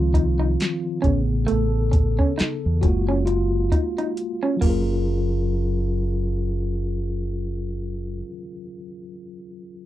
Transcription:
0.00 0.15 C#2 loud
0.00 1.00 D#3 soft
0.00 1.01 F3 soft
0.00 1.01 C4 soft
0.00 0.99 F4 medium
0.14 0.56 C2 medium
0.14 0.32 D#4 medium
0.14 kick medium
0.14 closed hi-hat medium
0.40 0.52 D#4 medium
0.60 snare medium
0.60 clap medium
0.60 closed hi-hat medium
1.02 1.45 A1 medium
1.02 2.79 C#3 soft
1.02 2.80 B3 soft
1.02 1.20 C#4 medium
1.02 2.79 G#4 soft
1.02 kick medium
1.02 closed hi-hat soft
1.47 1.65 A3 medium
1.47 2.87 A4 medium
1.47 closed hi-hat medium
1.51 2.17 A1 medium
1.92 muted clean electric guitar stroke soft
1.92 kick medium
1.92 closed hi-hat medium
2.19 2.32 C#4 medium
2.19 kick medium
2.38 2.55 D#4 medium
2.38 muted fingered electric bass stroke soft
2.38 snare loud
2.38 clap medium
2.38 closed hi-hat medium
2.66 2.82 E2 medium
2.81 3.69 F#1 medium
2.81 3.46 G#3 soft
2.81 3.24 F4 soft
2.81 3.24 F#4 medium
2.81 muted clean electric guitar stroke soft
2.81 kick medium
2.81 closed hi-hat medium
2.85 3.46 A#3 medium
3.09 3.21 C#4 medium
3.26 4.57 F4 medium
3.26 muted clean electric guitar stroke soft
3.26 closed hi-hat medium
3.72 3.90 D#4 medium
3.72 kick medium
3.72 closed hi-hat medium
3.98 4.11 D#4 medium
3.98 closed hi-hat soft
4.17 closed hi-hat medium
4.43 4.55 C#4 medium
4.57 8.15 F#3 medium
4.57 8.19 C#4 soft
4.61 8.22 F#1 medium
4.61 5.15 A#3 medium
4.61 8.22 F4 medium
4.61 kick medium
4.61 crash medium
4.67 8.25 G#4 soft
4.67 8.28 A#4 medium

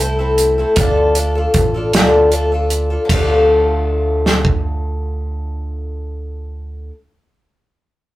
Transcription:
0.00 0.61 C2 medium
0.00 0.19 A3 medium
0.00 0.19 C4 medium
0.00 0.18 E4 medium
0.00 0.18 A4 medium
0.19 0.59 A3 soft
0.19 0.58 C4 soft
0.19 0.58 E4 medium
0.19 0.57 A4 medium
0.38 closed hi-hat medium
0.58 0.78 A3 soft
0.58 0.78 C4 soft
0.58 0.78 E4 medium
0.58 0.77 A4 soft
0.76 1.44 D2 medium
0.76 1.16 D3 medium
0.76 1.15 A3 medium
0.76 1.16 D4 medium
0.76 1.16 F4 medium
0.76 1.17 A4 medium
0.76 kick medium
0.76 closed hi-hat medium
1.15 1.35 A3 medium
1.15 1.36 D4 medium
1.15 1.36 F4 medium
1.15 closed hi-hat medium
1.19 1.34 A4 medium
1.35 1.75 D4 soft
1.35 1.75 F4 medium
1.35 1.73 A4 medium
1.54 1.88 A1 medium
1.54 kick medium
1.54 closed hi-hat medium
1.74 1.93 D4 soft
1.74 1.94 F4 soft
1.74 1.93 A4 medium
1.93 2.95 D2 medium
1.93 2.32 D3 medium
1.93 2.30 A3 medium
1.93 2.31 D4 medium
1.93 2.31 F4 medium
1.93 2.32 A4 medium
1.93 snare medium
1.93 closed hi-hat medium
2.31 2.51 A3 medium
2.31 2.51 D4 medium
2.31 2.52 F4 medium
2.31 2.51 A4 medium
2.31 closed hi-hat medium
2.52 2.91 D4 soft
2.52 2.90 F4 medium
2.52 2.89 A4 medium
2.70 closed hi-hat medium
2.90 3.11 D4 soft
2.90 3.10 F4 soft
2.90 3.10 A4 soft
3.05 6.90 D3 medium
3.09 6.88 D2 medium
3.09 6.93 A3 medium
3.09 kick medium
3.09 ride medium
3.13 6.94 D4 medium
3.13 6.96 F4 medium
3.20 6.98 A4 medium
4.26 snare medium
4.45 kick medium

